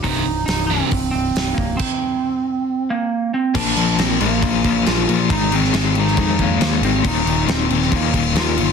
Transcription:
<<
  \new Staff \with { instrumentName = "Lead electric guitar" } { \time 4/4 \key c \minor \tempo 4 = 137 ees'4 ees'8 c'4 c'4 bes8 | c'2~ c'8 bes4 c'8 | d'4 c'8 bes4. f'4 | ees'8 c'4 ees'8 ees'8 bes4 c'8 |
ees'4 c'4 bes4 f'4 | }
  \new Staff \with { instrumentName = "Overdriven electric guitar" } { \clef bass \time 4/4 \key c \minor <c, g, c>8 r4 <c, g, c>8 r2 | r1 | <bes, f bes>8 <bes, f bes>8 <bes, f bes>8 <bes, f bes>8 <bes, f bes>8 <bes, f bes>8 <bes, f bes>8 <bes, f bes>8 | <aes, ees aes>8 <aes, ees aes>8 <aes, ees aes>8 <aes, ees aes>8 <aes, ees aes>8 <aes, ees aes>8 <aes, ees aes>8 <aes, ees aes>8 |
<ees, bes, ees>8 <ees, bes, ees>8 <ees, bes, ees>8 <ees, bes, ees>8 <ees, bes, ees>8 <ees, bes, ees>8 <ees, bes, ees>8 <ees, bes, ees>8 | }
  \new Staff \with { instrumentName = "Distorted electric guitar" } { \clef bass \time 4/4 \key c \minor <c, g, c>8 r4 <c, g, c>8 r2 | r1 | r1 | r1 |
r1 | }
  \new Staff \with { instrumentName = "Picked electric bass" } { \clef bass \time 4/4 \key c \minor c,,8 c,,8 c,,4 c,,8 c,,8 c,,8 c,,8 | r1 | bes,,8 bes,,8 bes,,8 bes,,8 bes,,8 bes,,8 bes,,8 bes,,8 | aes,,4 aes,,4 f,4 ees,8 aes,,8 |
ees,,8 ees,,8 ees,,8 ees,,8 ees,8 ees,,8 ees,8 g,,8 | }
  \new DrumStaff \with { instrumentName = "Drums" } \drummode { \time 4/4 <hho bd>4 <hho sn>4 <hho bd>4 <hho sn>8 bd8 | <cymc bd>4 r4 r4 r4 | <cymc bd>8 cymc8 <cymc sn>8 cymc8 <cymc bd>8 <cymc bd>8 <cymc sn>8 cymc8 | <cymc bd>8 cymc16 sn16 <cymc sn>8 cymc16 sn16 <cymc bd>8 <cymc bd>8 <cymc sn>8 cymc8 |
<cymc bd>8 cymc8 <cymc sn>8 cymc16 sn16 <cymc bd>8 <cymc bd>8 <cymc sn>8 cymc8 | }
>>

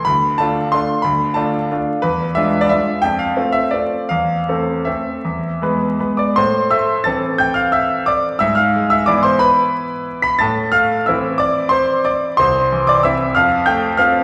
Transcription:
<<
  \new Staff \with { instrumentName = "Grand piano" } { \time 3/4 \key a \minor \tempo 4 = 178 b''4 a''4 c'''4 | b''4 a''4 r4 | b'4 e''8. d''16 e''4 | g''8 f''4 e''8 d''4 |
f''2 e''4~ | e''2 r8 <d'' d'''>8 | <c'' c'''>4 <e'' e'''>4 <a'' a'''>4 | <g'' g'''>8 <f'' f'''>8 <e'' e'''>4 <d'' d'''>4 |
<e'' e'''>8 <f'' f'''>4 <e'' e'''>8 <d'' d'''>8 <c'' c'''>8 | <b' b''>2~ <b' b''>8 <b'' b'''>8 | <a'' a'''>4 <f'' f'''>4 <e'' e'''>4 | <d'' d'''>4 <c'' c'''>4 <d'' d'''>4 |
<c'' c'''>4. <d'' d'''>8 <e'' e'''>4 | <f'' f'''>4 <g'' g'''>4 <f'' f'''>4 | }
  \new Staff \with { instrumentName = "Grand piano" } { \time 3/4 \key a \minor d,4 <a d' f'>4 <a d' f'>4 | d,4 <a d' f'>4 <a d' f'>4 | e,4 <gis d' f'>4 <gis d' f'>4 | f,4 <a c' f'>4 <a c' f'>4 |
e,4 <a c' a'>4 <a c' a'>4 | e,4 <gis b b'>4 <gis b b'>4 | a,4 a4 <e c' a'>4~ | <e c' a'>2. |
gis,4 gis4 <e b e'>4~ | <e b e'>2. | a,4 a4 <e c' e'>4~ | <e c' e'>2. |
c,4 e4 <c' e'>4 | f,4 a4 <c' f'>4 | }
>>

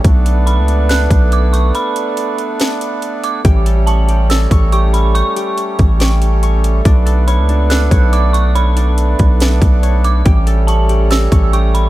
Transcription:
<<
  \new Staff \with { instrumentName = "Synth bell" } { \time 4/4 \key b \minor \tempo 4 = 141 r4 b''4 fis'''4 d'''8 cis'''8 | b''2.~ b''8 d'''8 | r4 a''4 e'''4 cis'''8 b''8 | cis'''1 |
r4 b''4 fis'''4 d'''8 cis'''8 | b''2.~ b''8 d'''8 | r4 a''4 e'''4 cis'''8 b''8 | }
  \new Staff \with { instrumentName = "Harp" } { \time 4/4 \key b \minor r1 | r1 | g'8 a'8 cis'''8 g'8 a'8 cis'''8 g'4 | cis'''8 g'4. g'4 cis'''4 |
d'8 a'8 cis''8 d'8 a'8 cis''8 d'4 | cis''8 d'4. d'4 cis''4 | g'8 a'8 cis'''8 g'8 a'8 cis'''8 g'4 | }
  \new Staff \with { instrumentName = "Harmonium" } { \time 4/4 \key b \minor <a b d'>1~ | <a b d'>1 | <g a cis'>1~ | <g a cis'>1 |
<b d'>1~ | <b d'>1 | <g cis'>1 | }
  \new Staff \with { instrumentName = "808-style bass" } { \clef bass \time 4/4 \key b \minor b,,4~ b,,16 cis,4~ cis,16 b,,4. | r1 | a,,2~ a,,8 a,,4.~ | a,,16 r4 r16 a,,2~ a,,8 |
b,,4~ b,,16 cis,4~ cis,16 b,,4.~ | b,,4. b,,4 b,,4. | a,,2~ a,,8 a,,4. | }
  \new DrumStaff \with { instrumentName = "Drums" } \drummode { \time 4/4 <hh bd>8 hh8 hh8 hh8 <hh sn>8 <hh bd>8 hh8 hh8 | hh8 hh8 hh8 hh8 <hh sn>8 hh8 hh8 hh8 | <hh bd>8 hh8 hh8 hh8 <hh sn>8 <hh bd>8 hh8 hh8 | hh8 hh8 hh8 <hh bd>8 <hh sn>8 hh8 hh8 hh8 |
<hh bd>8 hh8 hh8 hh8 <hh sn>8 <hh bd>8 hh8 hh8 | hh8 hh8 hh8 <hh bd>8 <hh sn>8 <hh bd>8 hh8 hh8 | <hh bd>8 hh8 hh8 hh8 <hh sn>8 <hh bd>8 hh8 hh8 | }
>>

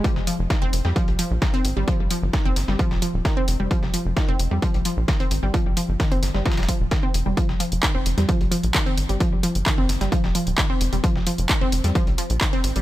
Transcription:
<<
  \new Staff \with { instrumentName = "Synth arpeggio sound" } { \clef bass \time 4/4 \key f \minor \tempo 4 = 131 f16 r16 f16 r16 ees16 c'16 r16 g16 f16 r16 f16 r16 ees16 c'16 r16 g16 | f16 r16 f16 r16 ees16 c'16 r16 g16 f16 r16 f16 r16 ees16 c'16 r16 g16 | f16 r16 f16 r16 ees16 c'16 r16 g16 f16 r16 f16 r16 ees16 c'16 r16 g16 | f16 r16 f16 r16 ees16 c'16 r16 g16 f16 r16 f16 r16 ees16 c'16 r16 g16 |
f16 r16 f16 r16 ees16 c'16 r16 g16 f16 r16 f16 r16 ees16 c'16 r16 g16 | f16 r16 f16 r16 ees16 c'16 r16 g16 f16 r16 f16 r16 ees16 c'16 r16 g16 | f16 r16 f16 r16 ees16 c'16 r16 g16 f16 r16 f16 r16 ees16 c'16 r16 g16 | }
  \new Staff \with { instrumentName = "Analog synth bass" } { \clef bass \time 4/4 \key f \minor r16 f,,16 r16 f,,16 r16 f,,16 f,,16 f,16 r16 bes,,16 r16 bes,,16 r8 aes,,16 aes,,16 | r16 g,,16 r16 g,,16 r16 g,,16 g,,16 g,,16 r16 ees,,16 r16 ees,,16 r8 f,,16 f,,16 | r16 f,,16 r16 f,,16 r16 f,,16 f,,16 f,16 r16 bes,,16 r16 bes,,16 r8 aes,,16 aes,,16 | r16 g,,16 r16 g,,16 r16 g,,16 g,,16 g,,16 r16 ees,,16 r16 ees,,16 r8 f,,16 f,,16 |
r16 f,,16 r16 f,,16 r16 f,,16 f,,16 f,16 r16 bes,,16 r16 bes,,16 r8 aes,,16 aes,,16 | r16 g,,16 r16 g,,16 r16 g,,16 g,,16 g,,16 r16 ees,,16 r16 ees,,16 r8 f,,16 f,,16 | r16 f,,16 r16 f,,16 r16 f,,16 f,,16 f,16 r16 bes,,16 r16 bes,,16 r8 aes,,16 aes,,16 | }
  \new DrumStaff \with { instrumentName = "Drums" } \drummode { \time 4/4 <hh bd>16 sn16 <hh hho>8 <hh bd sn>8 <hh hho>16 sn16 <hh bd>16 hh16 <hh hho>8 <hh bd sn>16 hh16 <hh hho>8 | <hh bd>8 <hh hho>8 <hh bd sn>8 <hh hho sn>16 sn16 <hh bd>16 sn16 <hh hho>8 <hh bd sn>8 <hh hho>8 | <hh bd>16 sn16 <hh hho>8 <hh bd sn>8 hho8 <hh bd>16 hh16 <hh hho>8 <hh bd sn>16 hh16 <hh hho>8 | <hh bd>8 <hh hho>8 <hh bd sn>16 hho16 <hh hho sn>16 sn16 <hh bd sn>32 <hh sn>32 <hh sn>32 <hh sn>32 <hh hho bd>8 <hh bd sn>8 <hh hho>8 |
<hh bd>16 sn16 <hh hho>16 hh16 <hc hh bd sn>8 <hh hho>16 <hh sn>16 <hh bd>16 hh16 <hh hho>16 hh16 <hc hh bd sn>16 hh16 <hh hho>16 hh16 | <hh bd>8 <hh hho>16 hh16 <hc hh bd sn>8 <hh hho sn>16 <hh sn>16 <hh bd>16 sn16 <hh hho>16 hh16 <hc hh bd sn>8 <hh hho>16 hh16 | <hh bd>16 sn16 <hh hho>16 hh16 <hc hh bd sn>8 <hh hho>16 <hh sn>16 <hh bd>16 hh16 <hh hho>16 hh16 <hc hh bd sn>16 hh16 <hh hho>16 hh16 | }
>>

